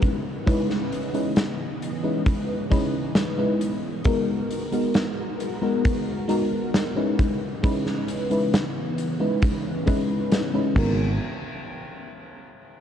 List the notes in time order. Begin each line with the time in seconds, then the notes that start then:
Already playing: G#3 C#4 D#4 E4 B4
0.02 C#3 E3 B3 D#5, kick, closed hi-hat
0.46 G#3 C#4 D#4 E4 B4, kick, closed hi-hat
0.70 snare
0.92 closed hi-hat
1.13 G#3 C#4 D#4 E4 B4, closed hi-hat
1.36 snare, closed hi-hat
1.83 closed hi-hat
2.03 G#3 C#4 D#4 E4 B4
2.26 kick, closed hi-hat
2.70 G#3 C#4 D#4 E4 B4, kick, closed hi-hat
3.15 snare, closed hi-hat
3.38 G#3 C#4 D#4 E4 B4
3.61 closed hi-hat
4.04 G#3 B3 D#4 F#4 A#4, kick, closed hi-hat
4.51 closed hi-hat
4.72 G#3 B3 D#4 F#4 A#4, closed hi-hat
4.94 snare, closed hi-hat
5.40 closed hi-hat
5.62 G#3 B3 D#4 F#4 A#4
5.85 kick, closed hi-hat
6.28 G#3 B3 D#4 F#4 A#4, closed hi-hat
6.74 snare, closed hi-hat
6.95 G#3 C#4 D#4 E4 B4
7.19 C#3 E3 B3 D#5, kick, closed hi-hat
7.62 G#3 C#4 D#4 E4 B4, kick, closed hi-hat
7.86 snare
8.08 closed hi-hat
8.30 G#3 C#4 D#4 E4 B4, closed hi-hat
8.54 snare, closed hi-hat
8.98 C#4, closed hi-hat
9.19 G#3 C#4 D#4 E4 B4
9.42 kick, closed hi-hat
9.86 G#3 C#4 D#4 E4 B4, kick, closed hi-hat
10.32 snare, closed hi-hat
10.53 G#3 C#4 D#4 E4 B4
10.74 G#1 G#3 B3 D#4 F#4, kick, crash
10.78 A#4